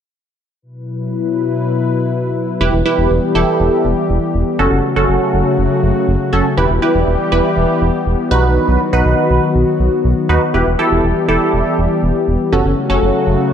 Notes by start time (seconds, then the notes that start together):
0.62 B2 F#3 E4 B4
2.61 E1 E3 G3 B3 E4 G4 B4
2.73 E1
2.86 E4 G4 B4
2.98 E1
3.10 E1
3.35 E1 E4 G4 A4
3.60 E1
3.85 E1
4.09 E1
4.34 E1
4.59 F#1 C#3 F#3 A3 C#4 F#4 A4
4.71 F#1
4.96 F#1 C#4 F#4 A4
5.09 F#1
5.33 F#1
5.58 F#1
5.83 F#1
6.08 F#1
6.33 F#1 C#4 F#4 A4
6.57 E1 E3 G3 B3 E4 G4 B4
6.70 E1
6.82 E4 G4 B4
6.95 E1
7.07 E1
7.32 E1 E4 G4 B4
7.57 E1
7.81 E1
8.06 E1
8.31 B1 D#3 F#3 D#4 F#4 B4
8.68 B1
8.93 B1 D#4 F#4 B4
9.05 B1
9.30 B1
9.55 B1
9.80 B1
10.04 B1
10.29 D#2 D#4 F#4 B4
10.54 E1 E3 G3 E4 G4 B4
10.67 E1
10.79 E4 G4 A4
10.91 E1
11.04 E1
11.28 E1 E4 G4 A4
11.53 E1
11.78 E1
12.03 E1
12.28 E1
12.52 F#1 C#3 F#3 A3 C#4 F#4 A4
12.65 F#1
12.90 F#1 C#4 F#4 A4
13.02 F#1
13.27 F#1